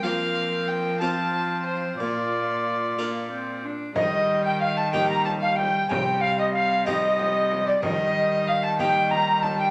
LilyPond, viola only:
\new Staff \with { instrumentName = "Viola" } { \clef bass \time 6/8 \key ees \lydian \tempo 4. = 62 c'4. c'4. | bes4. bes8 c'8 d'8 | g4. g4. | g4. g4. |
g4. g4. | }